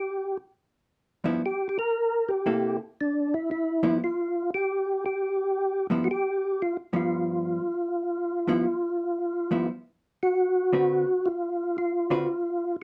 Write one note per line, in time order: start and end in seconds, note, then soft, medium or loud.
0.00 0.37 G4 medium
1.24 1.40 G2 medium
1.24 1.41 F3 medium
1.24 1.41 B3 medium
1.24 1.41 E4 medium
1.46 1.68 G4 medium
1.69 1.78 G4 medium
1.79 2.31 A#4 loud
2.29 2.77 G4 medium
2.46 2.77 C3 soft
2.46 2.77 A#3 medium
2.46 2.77 E4 medium
2.46 2.77 A4 medium
3.01 3.34 D4 medium
3.34 3.50 E4 medium
3.51 3.98 E4 medium
3.83 3.99 G2 medium
3.83 3.99 F3 medium
3.83 3.99 B3 medium
3.83 3.99 E4 medium
4.04 4.50 F4 medium
4.54 5.04 G4 loud
5.06 5.87 G4 medium
5.90 6.06 G2 medium
5.90 6.06 F3 medium
5.90 6.06 B3 medium
5.90 6.06 E4 medium
6.04 6.08 F#4 medium
6.11 6.62 G4 loud
6.62 6.77 F4 medium
6.93 7.59 G2 medium
6.93 7.59 F3 medium
6.93 7.59 B3 medium
6.93 9.67 F4 medium
8.48 8.64 G2 medium
8.48 8.64 F3 medium
8.48 8.64 B3 medium
8.48 8.65 E4 medium
9.51 9.67 G2 medium
9.51 9.67 F3 medium
9.51 9.67 B3 medium
9.51 9.68 E4 medium
10.23 11.28 F#4 loud
10.73 11.04 D3 soft
10.73 11.04 C4 soft
10.73 11.04 F#4 medium
10.73 11.04 B4 medium
11.26 11.77 F4 medium
11.78 12.76 F4 medium
12.10 12.26 D3 medium
12.10 12.26 C4 medium
12.10 12.26 F#4 medium
12.10 12.26 B4 medium